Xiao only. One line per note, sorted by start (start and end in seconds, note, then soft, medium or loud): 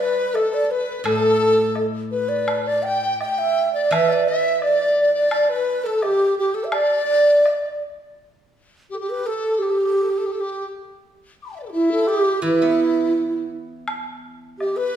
0.00 0.36 B4 medium
0.35 0.55 A4 medium
0.54 0.65 D5 loud
0.65 0.73 D5 medium
0.71 0.99 B4 medium
0.99 1.07 B4 medium
1.06 1.85 A4 loud
2.13 2.30 B4 medium
2.29 2.65 D5 medium
2.66 2.84 D5 medium
2.83 3.19 G5 loud
3.20 3.40 G5 medium
3.39 3.73 E5 loud
3.73 3.95 D5 medium
3.93 4.14 E5 loud
4.13 4.30 D5 medium
4.29 4.63 E5 medium
4.63 4.96 D5 loud
5.00 5.15 D5 medium
5.16 5.48 D5 medium
5.52 5.88 B4 medium
5.86 6.04 A4 medium
6.03 6.38 G4 medium
6.38 6.56 G4 medium
6.54 6.66 A4 medium
6.64 6.76 E5 medium
6.74 7.82 D5 loud
8.94 8.96 A4 medium
9.01 9.11 G4 medium
9.10 9.28 B4 medium
9.27 9.60 A4 medium
9.59 10.64 G4 medium
11.75 11.90 E4 medium
11.92 12.10 A4 medium
12.09 12.44 G4 medium
12.44 13.48 E4 medium
14.59 14.78 G4 medium
14.77 14.96 B4 medium